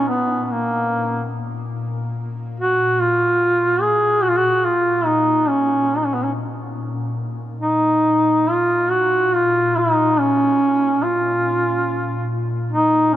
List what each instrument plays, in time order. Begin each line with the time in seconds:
Already playing: ambient pad A#2
0.08 duduk B3
0.44 duduk B3
0.52 duduk A#3
2.60 duduk F#4
3.00 duduk F4
3.81 duduk G#4
4.22 duduk F#4
4.29 duduk F4
4.37 duduk F#4
4.64 duduk F4
5.05 duduk D#4
5.48 duduk C#4
5.97 duduk D#4
6.05 duduk C#4
6.14 duduk B3
6.24 duduk C#4
7.60 ambient pad A#2, duduk D#4
8.48 duduk F4
8.91 duduk F#4
9.35 duduk F4
9.78 duduk D#4
10.19 duduk C#4
11.03 duduk F4
12.72 duduk D#4